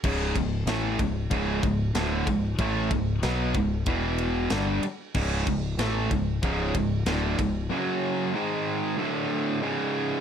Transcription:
<<
  \new Staff \with { instrumentName = "Distorted electric guitar" } { \clef bass \time 4/4 \key cis \minor \tempo 4 = 94 <cis, gis, cis>8 <cis, gis,>8 <a, e a>8 <cis, gis,>8 <cis, gis, cis>8 <cis, gis,>8 <d, a, d>8 <cis, gis,>8 | <a, e a>8 <cis, gis,>8 <b, fis b>8 <cis, gis,>8 <e, b, e>4 <g, d g>8 r8 | <cis, gis, cis>8 <cis, gis,>8 <a, e a>8 <cis, gis,>8 <cis, gis, cis>8 <cis, gis,>8 <d, a, d>8 <cis, gis,>8 | <fis, cis fis>4 <gis, dis gis>4 <d, a, d>4 <cis, gis, cis>4 | }
  \new Staff \with { instrumentName = "Distorted electric guitar" } { \clef bass \time 4/4 \key cis \minor <cis, gis, cis>8 <cis, gis,>8 <a, e a>8 <cis, gis,>8 <cis, gis, cis>8 <cis, gis,>8 <d, a, d>8 <cis, gis,>8 | <a, e a>8 <cis, gis,>8 <b, fis b>8 <cis, gis,>8 <e, b, e>4 <g, d g>8 r8 | <cis, gis, cis>8 <cis, gis,>8 <a, e a>8 <cis, gis,>8 <cis, gis, cis>8 <cis, gis,>8 <d, a, d>8 <cis, gis,>8 | <fis, cis fis>4 <gis, dis gis>4 <d, a, d>4 <cis, gis, cis>4 | }
  \new Staff \with { instrumentName = "Picked electric bass" } { \clef bass \time 4/4 \key cis \minor cis,,8 cis,,8 a,,8 cis,,8 cis,,8 cis,,8 d,,8 cis,,8 | a,,8 cis,,8 b,,8 cis,,8 e,,4 g,,8 r8 | cis,,8 cis,,8 a,,8 cis,,8 cis,,8 cis,,8 d,,8 cis,,8 | r1 | }
  \new DrumStaff \with { instrumentName = "Drums" } \drummode { \time 4/4 <cymc bd>8 <bd cymr>8 <cymr sn>8 <bd cymr>8 <bd cymr>8 <bd cymr>8 <cymr sn>8 <bd cymr>8 | <bd cymr>8 <bd cymr>8 <cymr sn>8 <bd cymr>8 <bd cymr>8 cymr8 <cymr sn>8 cymr8 | <cymc bd>8 <bd cymr>8 <cymr sn>8 <bd cymr>8 <bd cymr>8 <bd cymr>8 <cymr sn>8 <bd cymr>8 | r4 r4 r4 r4 | }
>>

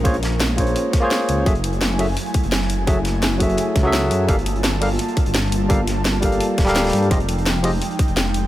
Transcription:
<<
  \new Staff \with { instrumentName = "Tine electric piano" } { \time 4/4 \key g \phrygian \tempo 4 = 170 <bes f' aes' c'' des''>16 r4 r16 <bes f' aes' c'' des''>4~ <bes f' aes' c'' des''>16 <bes f' aes' c'' des''>4~ <bes f' aes' c'' des''>16 | <ges ges' aes' a' fes''>16 r4 r16 <ges ges' aes' a' fes''>16 r2 r16 | <ges ges' aes' a' fes''>16 r4 r16 <ges ges' aes' a' fes''>4~ <ges ges' aes' a' fes''>16 <ges ges' aes' a' fes''>4~ <ges ges' aes' a' fes''>16 | <g g' a' bes' f''>16 r4 r16 <g g' a' bes' f''>16 r2 r16 |
<g g' a' bes' f''>16 r4 r16 <g g' a' bes' f''>4~ <g g' a' bes' f''>16 <g g' a' bes' f''>4~ <g g' a' bes' f''>16 | <f f' g' aes' ees''>16 r4 r16 <f f' g' aes' ees''>16 r2 r16 | }
  \new Staff \with { instrumentName = "Analog synth pad" } { \time 4/4 \key g \phrygian <aes des' bes'>1 | <ges a fes' aes''>1~ | <ges a fes' aes''>1 | <g bes f' a''>1~ |
<g bes f' a''>1 | <f aes ees' g''>1 | }
  \new Staff \with { instrumentName = "Detuned saw bass" } { \clef bass \time 4/4 \key g \phrygian bes,,4.~ bes,,16 bes,,16 r4. des,8 | ges,,4.~ ges,,16 ges,,16 r8. ges,,4~ ges,,16 | ges,,4.~ ges,,16 ges,,16 r8 des,4 ges,8 | g,,4.~ g,,16 g,,16 r8. g,,4~ g,,16 |
g,,4.~ g,,16 g,,16 r8 d,,4 g,8 | f,,4.~ f,,16 f,,16 r8. f,,4~ f,,16 | }
  \new DrumStaff \with { instrumentName = "Drums" } \drummode { \time 4/4 <hh bd>16 hh16 <hh sn>8 <hh sn>8 <hh bd>16 hh16 hh8 <hh bd sn>8 <hh sn>8 hh8 | <hh bd>16 hh16 hh16 hh16 <hh sn>8 <hh hho>8 hh16 hh16 <hh bd>16 hh16 <hh sn>16 sn16 hh8 | <hh bd>8 <hh sn>8 <hh sn>8 <hh bd>16 hh16 hh8 <hh bd sn>8 <hh sn>8 hh8 | <hh bd>16 hh16 hh16 hh16 <hh sn>8 <hh hho>8 hh16 hh16 <hh bd>16 hh16 <hh sn>16 sn16 hh8 |
<hh bd>8 <hh sn>8 <hh sn>8 <hh bd>16 hh16 hh8 <hh bd sn>16 <hh sn>16 <hh sn>16 <hh sn>32 <hh sn>32 hh16 hh16 | <hh bd>16 hh16 hh16 hh16 <hh sn>8 <hh hho>8 hh16 hh16 <hh bd>16 hh16 <hh sn>16 sn16 hh8 | }
>>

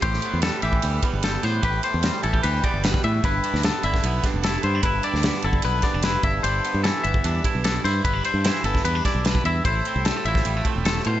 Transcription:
<<
  \new Staff \with { instrumentName = "Clean electric guitar" } { \time 4/4 \key a \minor \tempo 4 = 150 c''4 a'8 e''4 r8 a'8 c''8 | b'8 c''4 a'8 b'8 d''8 b'8 e''8 | b'4 a'8 e''4 r8 a'8 c''8 | b'8 d''4 a'8 b'8 d''8 b'8 e''8 |
c''4 a'8 e''4 r8 a'8 c''8 | b'8 c''4 a'8 b'8 d''8 b'8 e''8 | c''4 a'8 e''4 r8 a'8 c''8 | }
  \new Staff \with { instrumentName = "Clean electric guitar" } { \time 4/4 \key a \minor << { g'8 b8 g8 g'8 g8 b8 g'8 b8 | g'4 g8 e'16 g'16 g8 b4. | e'8 d'8 b8 e'8 b8 d'8 e'8 b16 d'16 | e'8 d'8 b8 e'8 b8 b16 d'16 e'8 e'8 |
d'8 b8 e'8 b8 d'8 e'8 d'8 e'8 | b16 d'8. e'8 b8 b16 d'16 e'8 d'8 e'8 | e'8 c'8 g16 a16 e'8 g16 a16 c'4. | } \\ { a,4. e4 e,4. | a,4. e4 e,8 b,8 a,8 | g,4. d4 g,4. | g,4. d4 g,4 g,8~ |
g,4 e4 g,4. g,8~ | g,4 e4 g,4. g,8 | a,4. f4 a,8 a,8 b,8 | } >> }
  \new Staff \with { instrumentName = "Fingered electric bass" } { \clef bass \time 4/4 \key a \minor a,,8 r16 e,8 r16 a,,8 d,8 r16 g,,8. a,8 | a,,8 r16 e,8 r16 a,,8 d,8 r16 g,,8. a,8 | g,,8 r16 d,8 r16 g,,8 b,,8 r16 f,,8. g,8 | g,,8 r16 d,8 r16 g,,8 b,,8 r16 f,,8. g,,8 |
g,,8 r16 g,8 r16 g,,8 e,8 r16 b,,8. g,8 | g,,8 r16 g,8 r16 g,,8 e,8 r16 b,,8. e,8 | a,,8 r16 c,8 r16 a,,8 a,,8 r16 e,,8. a,8 | }
  \new DrumStaff \with { instrumentName = "Drums" } \drummode { \time 4/4 <bd cymr>16 sn16 cymr8 <cymr sn>8 cymr16 bd16 cymr8 <bd cymr>8 <cymr sn>8 <cymr sn>8 | <bd cymr>8 cymr8 <cymr sn>8 cymr16 bd16 cymr8 <bd cymr>8 <cymr sn>16 <bd sn>16 cymr8 | <bd cymr>8 cymr16 sn16 <cymr sn>8 cymr16 <bd sn>16 cymr8 <bd cymr sn>8 <cymr sn>8 cymr8 | <bd cymr>8 cymr16 sn16 <cymr sn>16 sn16 cymr16 bd16 cymr8 <bd cymr sn>8 <cymr sn>8 <bd cymr>8 |
cymr8 cymr8 <cymr sn>8 cymr16 bd16 cymr8 <bd cymr>8 <cymr sn>8 <cymr sn>8 | <bd cymr>8 cymr8 <cymr sn>16 sn16 cymr16 <bd sn>16 cymr8 <bd cymr sn>8 <cymr sn>16 bd16 cymr8 | <bd cymr>8 cymr8 <cymr sn>8 cymr16 <bd sn>16 cymr8 <bd cymr>8 <cymr sn>16 sn16 cymr8 | }
>>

